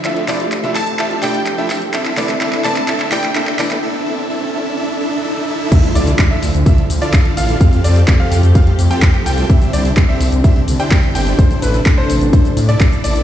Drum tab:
CC |----------------|----------------|----------------|x---------------|
HH |xxoxxxoxxxoxx-ox|xxoxxxoxxxoxx-ox|----------------|xxoxx-oxxxoxxxox|
SH |----------------|----------------|----------------|xxxxx-xxx-xxx-xx|
CP |x-x-x-x-x-x-x-x-|xxxxxxxxxxxxxxxx|----------------|----x-------x---|
BD |----------------|----------------|----------------|o---o---o---o---|

CC |----------------|----------------|----------------|
HH |xxoxx-oxxxoxxxox|xxoxx-oxxxoxxxox|xxoxx-oxxxoxxxox|
SH |xxxxx-xxx-xxx-xx|xxxxx-xxx-xxx-xx|xxxxx-xxxxxxxxxx|
CP |----x-------x---|----x-------x---|----x-------x---|
BD |o---o---o---o---|o---o---o---o---|o---o---o---o---|